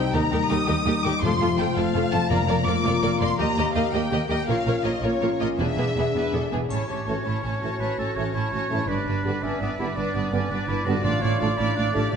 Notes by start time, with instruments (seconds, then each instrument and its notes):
Already playing: harp C3 G3 D#4 G4 C5 D#5 C6, french horn section G3 D#4, violin section G5
0.13 double bass section D#2, cello section D#2, harp D#3, viola section G3 D#4, violin section G4 A#4 A#5
0.31 double bass section D#2, cello section D#2, viola section G3 D#4, harp G3, violin section G4 A#4
0.49 double bass section D#2, cello section D#2, viola section G3 D#4, violin section G4 A#4 D#6, harp A#4
0.67 cello section D#2, double bass section D#2, viola section G3 D#4, violin section G4 A#4, harp G5
0.86 cello section D#2, double bass section D#2, viola section G3 D#4, violin section G4 A#4, harp G4
1.04 cello section D#2, double bass section D#2, harp G3, viola section G3 D#4, violin section G4 A#4 D6
1.22 double bass section F1, cello section F2, timpani F2, harp F3, viola section A3 F4, french horn section A3 F4, violin section F4 A4 C6
1.39 double bass section F1, cello section F2, viola section A3 F4, harp F4, violin section F4 A4
1.58 double bass section F1, cello section F2, viola section A3 F4, violin section F4 A4 G5, harp C5
1.76 double bass section F1, cello section F2, viola section A3 F4, violin section F4 A4 F5, harp A5
1.95 double bass section F1, cello section F2, viola section A3 F4, violin section F4 A4, harp F5
2.12 double bass section F1, cello section F2, viola section A3 F4, violin section F4 A4 A5, harp A4
2.29 double bass section F1, timpani F2, cello section F2, harp F3, french horn section A#3 F4, viola section A#3 F4, violin section A#4 D5 A#5
2.47 double bass section F1, cello section F2, viola section A#3 F4, harp F4, violin section A#4 D5
2.66 double bass section F1, cello section F2, viola section A#3 F4, violin section A#4 D5 D6, harp A#4
2.84 double bass section F1, cello section F2, viola section A#3 F4, violin section A#4 D5, harp A#5
3.02 double bass section F1, cello section F2, viola section A#3 F4, violin section A#4 D5, harp F5
3.20 double bass section F1, cello section F2, viola section A#3 F4, harp A#4, violin section A#4 D5 C6
3.38 double bass section D#2, cello section D#2, harp D#3, viola section A#3 G4, french horn section A#3 G4, violin section A#4 D#5 A#5
3.56 cello section D#2, double bass section D#2, harp A#3, viola section A#3 G4, violin section A#4 D#5
3.74 cello section D#2, double bass section D#2, viola section A#3 G4, harp A#4, violin section A#4 D#5 F5
3.92 double bass section D#2, cello section D#2, french horn section A#3 G4, viola section A#3 G4, violin section A#4 D#5 G5, harp G5
4.11 cello section D#2, double bass section D#2, viola section A#3 G4, harp A#4, violin section A#4 D#5
4.21 french horn section A#3
4.29 cello section D#2, double bass section D#2, viola section A#3 G4, harp G4, violin section A#4 D#5 G5
4.48 double bass section A#1, cello section A#2, harp A#2, viola section A#3 F4, french horn section C#4 F4, violin section A#4 C#5 F5
4.65 double bass section A#1, cello section A#2, viola section A#3 F4, harp C#4, violin section A#4 C#5
4.84 double bass section A#1, cello section A#2, viola section A#3 F4, harp A#4, violin section A#4 C#5 D#5
5.02 double bass section A#1, cello section A#2, viola section A#3 F4, french horn section C#4 F4, violin section A#4 C#5, harp F5
5.21 double bass section A#1, cello section A#2, viola section A#3 F4, violin section A#4 C#5, harp C#5
5.39 double bass section A#1, cello section A#2, viola section A#3 F4, harp F4, violin section A#4 C#5 D#5
5.58 double bass section E1, cello section E2, harp E2, viola section B3 D4, french horn section D4 G#4, violin section G#4 B4 E5
5.76 double bass section E1, cello section E2, viola section B3 D4, harp D4, violin section G#4 B4
5.96 double bass section E1, cello section E2, viola section B3 D4, violin section G#4 B4, harp B4
6.14 double bass section E1, cello section E2, viola section B3 D4, violin section B4, harp G#5
6.33 double bass section E1, cello section E2, viola section B3 D4, violin section A4, harp D5
6.52 double bass section E1, cello section E2, harp A2 G#4, viola section B3 D4, violin section G#4
6.57 harp C#4
6.62 harp E4
6.66 harp A4, violin section A5
6.70 double bass section A1, cello section A2, viola section C#4, clarinet E4, oboe C#5, violin section C#5, triangle
6.88 double bass section A1, cello section A2, viola section C#4, clarinet G4, violin section C#5 A5
7.06 double bass section A1, cello section A2, trombone section E3 A3, viola section C#4, french horn section C#4 A4, clarinet F#4, violin section C#5 A5
7.24 double bass section A1, cello section A2, viola section C#4, clarinet E4, violin section C#5 A5
7.42 double bass section A1, cello section A2, viola section C#4, clarinet C#4, violin section C#5 A5
7.61 double bass section A1, cello section A2, trombone section E3 A3, viola section C#4, french horn section C#4 A4, clarinet F#4, violin section C#5 A5
7.79 double bass section A1, cello section A2, viola section C#4, oboe B4, violin section C#5 A5
7.98 double bass section A1, cello section A2, viola section C#4, oboe A4, violin section C#5 A5
8.16 double bass section A1, cello section A2, trombone section E3 A3, viola section C#4, french horn section C#4 A4, oboe C#5, violin section C#5 A5
8.33 double bass section A1, cello section A2, viola section C#4, clarinet E4, violin section C#5 A5, oboe C#5
8.51 double bass section A1, cello section A2, viola section C#4, clarinet F#4, violin section C#5 A5
8.69 double bass section A1, harp G2, cello section A2, trombone section E3 A3, french horn section C#4 A4, viola section C#4, clarinet E4, violin section C#5 A5
8.75 harp D4
8.80 harp G4
8.84 double bass section G1, harp B4, oboe B4
8.88 cello section G2, viola section D4, clarinet D4, violin section B4 D5
9.05 double bass section G1, cello section G2, viola section D4, violin section B4 D5
9.24 double bass section G1, cello section G2, trombone section D3 B3, french horn section D4 G4, viola section D4, violin section B4 D5
9.42 double bass section G1, cello section G2, clarinet C#4, viola section D4, violin section B4 D5, oboe E5
9.61 double bass section G1, cello section G2, clarinet B3, viola section D4, violin section B4 D5
9.78 double bass section G1, cello section G2, trombone section D3 B3, french horn section D4 G4, viola section D4, clarinet E4, violin section B4 D5
9.96 double bass section G1, cello section G2, viola section D4, clarinet D4, violin section B4 D5, oboe D5
10.14 double bass section G1, cello section G2, clarinet B3, viola section D4, violin section B4 D5
10.31 double bass section G1, cello section G2, trombone section D3 B3, clarinet C#4, viola section D4, french horn section D4 G4, violin section B4 D5
10.50 double bass section G1, cello section G2, viola section D4, clarinet D4, violin section B4 D5
10.68 double bass section G1, cello section G2, viola section D4, clarinet E4, violin section B4 D5
10.85 double bass section G1, cello section G2, harp A2, trombone section D3 B3, viola section D4, french horn section D4 G4, clarinet F#4, violin section B4 D5
10.90 harp D3
10.95 harp F4
11.00 viola section D4, violin section D5, harp F5
11.04 double bass section A1, timpani A2, cello section A2, clarinet F4, oboe D5, violin section F5
11.22 double bass section A1, cello section A2, viola section D4, oboe C#5, violin section D5 F5
11.39 double bass section A1, cello section A2, trombone section D3 A3, french horn section D4 F4, viola section D4, violin section D5 F5, oboe D5
11.58 double bass section A1, cello section A2, viola section D4, clarinet E4, violin section D5 F5
11.76 double bass section A1, cello section A2, clarinet D4, viola section D4, violin section D5 F5
11.92 cello section A2, trombone section D3 A3, viola section D4, clarinet G4, violin section D5 F5
11.96 double bass section A1, french horn section D4 F4
12.12 cello section A2, oboe D5